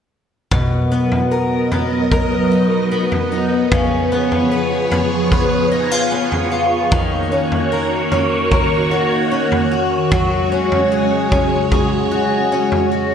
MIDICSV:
0, 0, Header, 1, 4, 480
1, 0, Start_track
1, 0, Tempo, 800000
1, 310, Time_signature, 4, 2, 24, 8
1, 7888, End_track
2, 0, Start_track
2, 0, Title_t, "Twelve-string acoustic guitar"
2, 0, Program_c, 0, 25
2, 309, Note_on_c, 0, 47, 64
2, 549, Note_on_c, 0, 59, 46
2, 789, Note_on_c, 0, 70, 51
2, 1027, Note_off_c, 0, 59, 0
2, 1029, Note_on_c, 0, 59, 45
2, 1262, Note_off_c, 0, 70, 0
2, 1269, Note_on_c, 0, 70, 54
2, 1509, Note_on_c, 0, 63, 47
2, 1747, Note_off_c, 0, 59, 0
2, 1749, Note_on_c, 0, 59, 47
2, 1984, Note_off_c, 0, 63, 0
2, 1991, Note_on_c, 0, 63, 47
2, 2230, Note_off_c, 0, 47, 0
2, 2230, Note_on_c, 0, 49, 61
2, 2278, Note_off_c, 0, 70, 0
2, 2279, Note_off_c, 0, 63, 0
2, 2468, Note_off_c, 0, 59, 0
2, 2471, Note_on_c, 0, 59, 50
2, 2709, Note_on_c, 0, 71, 53
2, 2941, Note_off_c, 0, 59, 0
2, 2949, Note_on_c, 0, 59, 52
2, 3183, Note_off_c, 0, 71, 0
2, 3190, Note_on_c, 0, 71, 53
2, 3429, Note_on_c, 0, 63, 52
2, 3549, Note_off_c, 0, 63, 0
2, 3549, Note_on_c, 0, 65, 38
2, 3662, Note_off_c, 0, 59, 0
2, 3669, Note_on_c, 0, 59, 48
2, 3902, Note_off_c, 0, 65, 0
2, 3909, Note_on_c, 0, 65, 46
2, 4146, Note_off_c, 0, 49, 0
2, 4149, Note_on_c, 0, 51, 67
2, 4198, Note_off_c, 0, 59, 0
2, 4198, Note_off_c, 0, 65, 0
2, 4198, Note_off_c, 0, 71, 0
2, 4390, Note_on_c, 0, 61, 47
2, 4631, Note_on_c, 0, 70, 55
2, 4867, Note_off_c, 0, 61, 0
2, 4869, Note_on_c, 0, 61, 50
2, 5100, Note_off_c, 0, 70, 0
2, 5107, Note_on_c, 0, 70, 51
2, 5347, Note_on_c, 0, 66, 50
2, 5586, Note_off_c, 0, 61, 0
2, 5589, Note_on_c, 0, 61, 48
2, 5826, Note_off_c, 0, 66, 0
2, 5829, Note_on_c, 0, 66, 50
2, 6069, Note_on_c, 0, 54, 67
2, 6070, Note_off_c, 0, 51, 0
2, 6117, Note_off_c, 0, 70, 0
2, 6309, Note_off_c, 0, 61, 0
2, 6311, Note_on_c, 0, 61, 46
2, 6550, Note_on_c, 0, 68, 52
2, 6568, Note_off_c, 0, 66, 0
2, 6784, Note_off_c, 0, 61, 0
2, 6792, Note_on_c, 0, 61, 47
2, 7022, Note_off_c, 0, 68, 0
2, 7030, Note_on_c, 0, 68, 50
2, 7269, Note_on_c, 0, 66, 47
2, 7504, Note_off_c, 0, 61, 0
2, 7512, Note_on_c, 0, 61, 50
2, 7747, Note_off_c, 0, 66, 0
2, 7750, Note_on_c, 0, 66, 48
2, 7888, Note_off_c, 0, 54, 0
2, 7888, Note_off_c, 0, 61, 0
2, 7888, Note_off_c, 0, 66, 0
2, 7888, Note_off_c, 0, 68, 0
2, 7888, End_track
3, 0, Start_track
3, 0, Title_t, "String machine"
3, 0, Program_c, 1, 50
3, 309, Note_on_c, 1, 54, 68
3, 309, Note_on_c, 1, 75, 73
3, 310, Note_on_c, 1, 59, 61
3, 310, Note_on_c, 1, 70, 63
3, 2211, Note_off_c, 1, 54, 0
3, 2211, Note_off_c, 1, 70, 0
3, 2211, Note_off_c, 1, 75, 0
3, 2229, Note_on_c, 1, 73, 76
3, 2230, Note_on_c, 1, 53, 65
3, 2231, Note_on_c, 1, 68, 61
3, 4126, Note_off_c, 1, 59, 0
3, 4131, Note_off_c, 1, 53, 0
3, 4131, Note_off_c, 1, 68, 0
3, 4131, Note_off_c, 1, 73, 0
3, 4151, Note_on_c, 1, 66, 65
3, 4151, Note_on_c, 1, 73, 85
3, 4152, Note_on_c, 1, 51, 71
3, 4153, Note_on_c, 1, 58, 67
3, 6051, Note_off_c, 1, 73, 0
3, 6052, Note_off_c, 1, 51, 0
3, 6052, Note_off_c, 1, 58, 0
3, 6069, Note_on_c, 1, 73, 82
3, 6070, Note_on_c, 1, 49, 72
3, 6071, Note_on_c, 1, 56, 65
3, 7888, Note_off_c, 1, 49, 0
3, 7888, Note_off_c, 1, 56, 0
3, 7888, Note_off_c, 1, 66, 0
3, 7888, Note_off_c, 1, 73, 0
3, 7888, End_track
4, 0, Start_track
4, 0, Title_t, "Drums"
4, 309, Note_on_c, 9, 43, 83
4, 310, Note_on_c, 9, 36, 96
4, 369, Note_off_c, 9, 43, 0
4, 370, Note_off_c, 9, 36, 0
4, 670, Note_on_c, 9, 43, 51
4, 730, Note_off_c, 9, 43, 0
4, 1030, Note_on_c, 9, 43, 49
4, 1090, Note_off_c, 9, 43, 0
4, 1269, Note_on_c, 9, 36, 76
4, 1269, Note_on_c, 9, 43, 53
4, 1329, Note_off_c, 9, 36, 0
4, 1329, Note_off_c, 9, 43, 0
4, 1871, Note_on_c, 9, 43, 48
4, 1931, Note_off_c, 9, 43, 0
4, 2230, Note_on_c, 9, 36, 89
4, 2230, Note_on_c, 9, 43, 80
4, 2290, Note_off_c, 9, 36, 0
4, 2290, Note_off_c, 9, 43, 0
4, 2591, Note_on_c, 9, 43, 51
4, 2651, Note_off_c, 9, 43, 0
4, 2950, Note_on_c, 9, 43, 56
4, 3010, Note_off_c, 9, 43, 0
4, 3190, Note_on_c, 9, 36, 75
4, 3191, Note_on_c, 9, 43, 52
4, 3250, Note_off_c, 9, 36, 0
4, 3251, Note_off_c, 9, 43, 0
4, 3792, Note_on_c, 9, 43, 51
4, 3852, Note_off_c, 9, 43, 0
4, 4151, Note_on_c, 9, 36, 99
4, 4151, Note_on_c, 9, 43, 82
4, 4211, Note_off_c, 9, 36, 0
4, 4211, Note_off_c, 9, 43, 0
4, 4511, Note_on_c, 9, 43, 53
4, 4571, Note_off_c, 9, 43, 0
4, 4870, Note_on_c, 9, 43, 54
4, 4930, Note_off_c, 9, 43, 0
4, 5109, Note_on_c, 9, 43, 53
4, 5110, Note_on_c, 9, 36, 82
4, 5169, Note_off_c, 9, 43, 0
4, 5170, Note_off_c, 9, 36, 0
4, 5711, Note_on_c, 9, 43, 51
4, 5771, Note_off_c, 9, 43, 0
4, 6070, Note_on_c, 9, 43, 90
4, 6071, Note_on_c, 9, 36, 90
4, 6130, Note_off_c, 9, 43, 0
4, 6131, Note_off_c, 9, 36, 0
4, 6432, Note_on_c, 9, 43, 57
4, 6492, Note_off_c, 9, 43, 0
4, 6791, Note_on_c, 9, 36, 73
4, 6791, Note_on_c, 9, 43, 52
4, 6851, Note_off_c, 9, 36, 0
4, 6851, Note_off_c, 9, 43, 0
4, 7030, Note_on_c, 9, 36, 78
4, 7031, Note_on_c, 9, 43, 54
4, 7090, Note_off_c, 9, 36, 0
4, 7091, Note_off_c, 9, 43, 0
4, 7632, Note_on_c, 9, 43, 52
4, 7692, Note_off_c, 9, 43, 0
4, 7888, End_track
0, 0, End_of_file